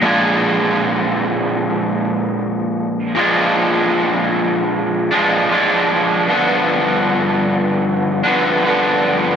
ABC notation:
X:1
M:4/4
L:1/8
Q:1/4=77
K:Bbmix
V:1 name="Overdriven electric guitar" clef=bass
[B,,F,A,DA]8 | [B,,F,A,D]4- [B,,F,A,D] [B,,F,A,D] [B,,F,A,D]2 | [G,,D,F,=B,D]4- [G,,D,F,B,D] [G,,D,F,B,D] [G,,D,F,B,D]2 |]